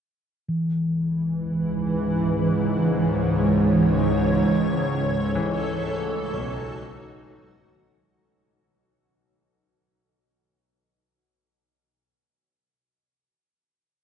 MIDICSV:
0, 0, Header, 1, 5, 480
1, 0, Start_track
1, 0, Key_signature, 4, "minor"
1, 0, Tempo, 500000
1, 13475, End_track
2, 0, Start_track
2, 0, Title_t, "Ambient pad"
2, 0, Program_c, 0, 92
2, 439, Note_on_c, 0, 52, 82
2, 2088, Note_on_c, 0, 73, 77
2, 4112, Note_off_c, 0, 52, 0
2, 4114, Note_on_c, 0, 69, 77
2, 5373, Note_on_c, 0, 63, 62
2, 5748, Note_on_c, 0, 66, 84
2, 7771, Note_off_c, 0, 73, 0
2, 7772, Note_off_c, 0, 66, 0
2, 7778, Note_off_c, 0, 69, 0
2, 7787, Note_off_c, 0, 63, 0
2, 13475, End_track
3, 0, Start_track
3, 0, Title_t, "Singing bowl"
3, 0, Program_c, 1, 14
3, 467, Note_on_c, 1, 52, 53
3, 7801, Note_off_c, 1, 52, 0
3, 13475, End_track
4, 0, Start_track
4, 0, Title_t, "Grand piano"
4, 0, Program_c, 2, 0
4, 647, Control_c, 2, 64, 127
4, 3828, Note_on_c, 2, 63, 63
4, 4138, Control_c, 2, 64, 0
4, 4240, Note_on_c, 2, 37, 43
4, 4315, Control_c, 2, 64, 127
4, 5139, Note_on_c, 2, 52, 75
4, 6084, Note_on_c, 2, 35, 56
4, 6262, Note_off_c, 2, 37, 0
4, 7796, Control_c, 2, 64, 0
4, 9319, Note_off_c, 2, 63, 0
4, 10630, Note_off_c, 2, 52, 0
4, 11573, Note_off_c, 2, 35, 0
4, 13475, End_track
5, 0, Start_track
5, 0, Title_t, "Synth drone"
5, 0, Program_c, 3, 95
5, 453, Note_on_c, 3, 37, 63
5, 470, Note_on_c, 3, 44, 57
5, 7868, Note_off_c, 3, 37, 0
5, 7876, Note_off_c, 3, 44, 0
5, 13475, End_track
0, 0, End_of_file